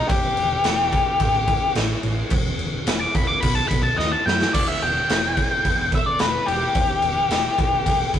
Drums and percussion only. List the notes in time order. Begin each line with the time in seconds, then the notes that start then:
0.10 kick, crash
0.37 crash
0.64 snare, crash
0.93 kick, crash
1.20 kick, crash
1.47 kick, crash
1.75 snare, crash
2.03 crash
2.30 kick, crash
2.59 crash
2.87 snare, crash
3.15 kick, crash
3.42 kick, crash
3.71 kick, crash
4.00 snare
4.28 snare
4.42 snare
4.54 kick, crash
4.82 crash
5.09 snare, crash
5.37 kick, crash
5.65 kick, crash
5.92 kick, crash
6.19 snare, crash
6.48 crash
6.75 kick, crash
7.02 crash
7.31 snare, crash
7.58 kick, crash
7.86 kick, crash
8.14 kick, crash